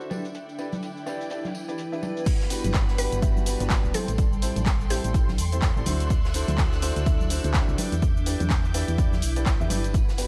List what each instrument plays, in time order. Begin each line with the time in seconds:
Already playing: ambient pad D4 A4 E5
0.01 tambourine, cabasa
0.10 grand piano D4 E4 G4 B4 D5, ambient pad E4, violin section E4 D5 G5, closed hi-hat, tambourine, high conga
0.25 tambourine, cabasa
0.35 closed hi-hat, tambourine, cabasa
0.49 tambourine, cabasa
0.58 grand piano D4 E4 G4 B4 D5, closed hi-hat, tambourine
0.68 ambient pad B4
0.72 tambourine, high conga, cabasa
0.83 closed hi-hat, tambourine, cabasa
0.97 tambourine, cabasa
1.06 grand piano D4 E4 G4 B4 D5, snare, closed hi-hat, tambourine
1.21 tambourine, cabasa
1.30 grand piano D4 E4 G4 B4 D5, closed hi-hat, tambourine, cabasa
1.44 snare, tambourine, high conga, cabasa
1.54 closed hi-hat, tambourine
1.68 grand piano D4 E4 G4 B4 D5, closed hi-hat, tambourine, cabasa
1.78 closed hi-hat, tambourine, cabasa
1.92 grand piano D4 E4 G4 B4 E5, tambourine, cabasa
2.02 grand piano D4 E4 G4 B4 D5, closed hi-hat, tambourine, high conga
2.17 tambourine, cabasa
2.26 ambient pad G3, violin section G3 F#5 B5, kick, closed hi-hat, crash, tambourine, cabasa
2.40 snare, tambourine, cabasa
2.50 grand piano B3 D4 F#4 G4 B4, closed hi-hat, open hi-hat, tambourine, cabasa
2.64 fm bass G1, closed hi-hat, tambourine, high conga, cabasa
2.70 ambient pad A5, kick, snare, clap, closed hi-hat, tambourine
2.74 closed hi-hat, cabasa
2.88 ambient pad D5, snare, tambourine, cabasa
2.98 grand piano B3 D4 F#4 G4 B4, synth pluck B4, closed hi-hat, open hi-hat, tambourine, cabasa
3.12 fm bass G1, closed hi-hat, tambourine, cabasa
3.22 grand piano B3 D4 F#4 G4 E5, kick, closed hi-hat, tambourine, cabasa
3.36 tambourine, high conga, cabasa
3.46 grand piano B3 D4 F#4 G4 B4, closed hi-hat, open hi-hat, tambourine, cabasa
3.60 fm bass G1, grand piano B3 D4 F#4 G4 B4, closed hi-hat, tambourine, cabasa
3.70 kick, snare, clap, closed hi-hat, tambourine, cabasa
3.84 fm bass D1, tambourine, cabasa
3.94 grand piano C4 E4 G4 A4 C5, ambient pad A4, violin section A4 G5 C6, synth pluck A4, closed hi-hat, open hi-hat, tambourine, high conga, cabasa
4.08 fm bass A1, closed hi-hat, tambourine, cabasa
4.18 kick, closed hi-hat, tambourine, cabasa
4.32 tambourine, cabasa
4.42 grand piano C4 E4 G4 A4 C5, closed hi-hat, open hi-hat, tambourine, cabasa
4.56 fm bass A1, ambient pad E5, closed hi-hat, tambourine, high conga, cabasa
4.66 kick, snare, clap, closed hi-hat, tambourine, cabasa
4.80 tambourine, cabasa
4.90 grand piano C4 E4 G4 A4 C5, synth pluck G4, snare, closed hi-hat, open hi-hat, tambourine, cabasa
5.04 fm bass A1, closed hi-hat, tambourine, cabasa
5.14 grand piano C4 E4 G4 A4 C5, kick, closed hi-hat, tambourine, cabasa
5.28 snare, tambourine, high conga, cabasa
5.38 fm bass E2, closed hi-hat, open hi-hat, tambourine, cabasa
5.52 grand piano C4 E4 G4 A4 C5, closed hi-hat, tambourine, cabasa
5.62 kick, snare, clap, closed hi-hat, tambourine, cabasa
5.76 fm bass A1, grand piano C4 E4 G4 A4 D5, tambourine, cabasa
5.86 fm bass D2, grand piano D4 E4 F#4 A4 C5, ambient pad D4, violin section D5 E6 F#6, closed hi-hat, open hi-hat, tambourine, high conga, cabasa
6.00 closed hi-hat, tambourine, cabasa
6.10 kick, closed hi-hat, tambourine, cabasa
6.24 snare, tambourine, cabasa
6.34 grand piano D4 E4 F#4 A4 C5, closed hi-hat, open hi-hat, tambourine, cabasa
6.48 fm bass D2, closed hi-hat, tambourine, high conga, cabasa
6.58 kick, snare, clap, closed hi-hat, tambourine, cabasa
6.72 snare, tambourine, cabasa
6.82 grand piano D4 E4 F#4 A4 C5, closed hi-hat, open hi-hat, tambourine, cabasa
6.96 fm bass D2, closed hi-hat, tambourine, cabasa
7.06 grand piano D4 E4 F#4 A4 E5, kick, closed hi-hat, tambourine, cabasa
7.20 tambourine, high conga, cabasa
7.30 grand piano D4 E4 F#4 A4 C5, closed hi-hat, open hi-hat, tambourine, cabasa
7.44 fm bass D2, grand piano D4 E4 F#4 A4 C5, closed hi-hat, tambourine, cabasa
7.53 kick, snare, clap, closed hi-hat, tambourine, cabasa
7.68 fm bass C2, tambourine, cabasa
7.78 grand piano D4 E4 G4 B4 D5, ambient pad E4, violin section E5 D6 G6, closed hi-hat, open hi-hat, tambourine, high conga, cabasa
7.92 fm bass E2, closed hi-hat, tambourine, cabasa
8.02 kick, closed hi-hat, tambourine, cabasa
8.17 tambourine, cabasa
8.26 grand piano D4 E4 G4 B4 D5, closed hi-hat, open hi-hat, tambourine, cabasa
8.40 fm bass E2, closed hi-hat, tambourine, high conga, cabasa
8.49 kick, snare, clap, closed hi-hat, tambourine, cabasa
8.58 ambient pad B4
8.64 tambourine, cabasa
8.74 grand piano D4 E4 G4 B4 D5, snare, closed hi-hat, open hi-hat, tambourine, cabasa
8.88 fm bass E2, closed hi-hat, tambourine, cabasa
8.98 grand piano D4 E4 G4 B4 D5, kick, closed hi-hat, tambourine, cabasa
9.12 snare, tambourine, high conga, cabasa
9.22 fm bass B1, closed hi-hat, open hi-hat, tambourine, cabasa
9.36 grand piano D4 E4 G4 B4 D5, closed hi-hat, tambourine, cabasa
9.46 kick, snare, clap, closed hi-hat, tambourine, cabasa
9.60 fm bass E2, grand piano D4 E4 G4 B4 E5, tambourine, cabasa
9.70 fm bass G1, grand piano D4 E4 G4 B4 D5, closed hi-hat, open hi-hat, tambourine, high conga, cabasa
9.84 closed hi-hat, tambourine, cabasa
9.94 violin section G3 F#5 B5, ambient pad G3, kick, closed hi-hat, tambourine, cabasa
10.08 snare, tambourine, cabasa
10.17 grand piano B3 D4 F#4 G4 B4, ambient pad A5, closed hi-hat, open hi-hat, tambourine, cabasa